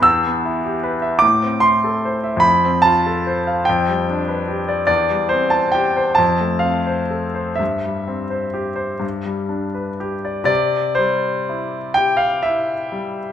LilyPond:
\new Staff \with { instrumentName = "Grand piano" } { \time 6/8 \key c \major \tempo 4. = 46 << { e'''4. d'''8 c'''4 | b''8 a''4 g''8 r4 | d''8 c''16 a''16 g''8 a''8 f''4 | e''2~ e''8 r8 |
d''8 c''4 g''16 f''16 e''4 | } \\ { e,16 b16 e'16 g'16 b'16 e''16 a,16 c'16 e'16 a'16 c''16 e''16 | f,16 c'16 f'16 a'16 c''16 f''16 f,16 g16 d'16 b'16 g'16 d''16 | e,16 g16 c'16 c''16 g'16 c''16 f,16 a16 c'16 c''16 a'16 c''16 | g,16 g16 c'16 c''16 g'16 c''16 g,16 g16 d'16 b'16 g'16 d''16 |
c8 g8 e'8 g'8 e'8 g8 | } >> }